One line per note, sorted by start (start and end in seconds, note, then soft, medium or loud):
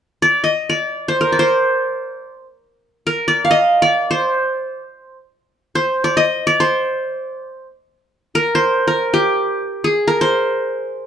0.22 0.50 D5 medium
0.44 0.76 D#5 medium
0.70 1.32 D5 medium
1.08 1.39 C5 medium
1.21 2.34 A#4 medium
1.32 2.32 D5 soft
1.39 2.45 C5 medium
3.07 4.20 A#4 medium
3.28 3.57 D5 medium
3.45 4.33 F5 medium
3.51 3.88 D#5 medium
3.82 4.82 D5 medium
4.11 5.16 C5 medium
5.75 6.60 C5 medium
6.04 6.23 D5 medium
6.17 6.53 D#5 medium
6.47 7.46 D5 medium
6.60 7.66 C5 medium
8.35 8.87 A#4 medium
8.55 9.60 C5 medium
8.88 10.01 A#4 medium
9.14 9.90 G4 medium
9.84 11.06 G#4 medium
10.08 11.07 A#4 medium
10.21 11.07 C5 medium